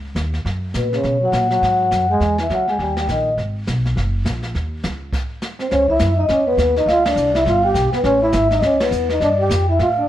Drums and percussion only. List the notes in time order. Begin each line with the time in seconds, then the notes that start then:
0.16 snare, hi-hat pedal
0.34 snare
0.46 brush sweep, snare
0.74 snare, hi-hat pedal
0.93 snare
1.03 brush sweep, snare
1.33 snare, hi-hat pedal
1.50 snare
1.63 brush sweep, snare
1.91 snare, hi-hat pedal
2.20 brush sweep, snare
2.38 snare
2.50 snare, hi-hat pedal
2.67 snare
2.79 brush sweep, snare
2.97 snare
3.08 snare, hi-hat pedal
3.38 brush sweep, snare
3.67 snare, hi-hat pedal
3.85 snare
3.97 brush sweep, snare
4.25 snare, hi-hat pedal
4.43 snare
4.55 brush sweep, snare
4.84 snare, hi-hat pedal
5.13 brush sweep, kick, snare, crash
5.42 snare, hi-hat pedal
5.59 snare
5.71 brush sweep, snare
5.88 kick
5.99 snare, hi-hat pedal
6.29 brush sweep, snare
6.58 snare, hi-hat pedal
6.76 snare
6.88 brush sweep, snare
7.05 snare, ride
7.17 hi-hat pedal
7.35 snare
7.46 brush sweep, snare
7.75 snare, hi-hat pedal
7.92 snare
8.04 brush sweep, snare
8.32 snare, hi-hat pedal
8.51 snare
8.62 brush sweep, snare
8.80 snare, ride
8.92 hi-hat pedal
9.09 snare
9.21 brush sweep, snare
9.50 snare, hi-hat pedal
9.79 brush sweep, snare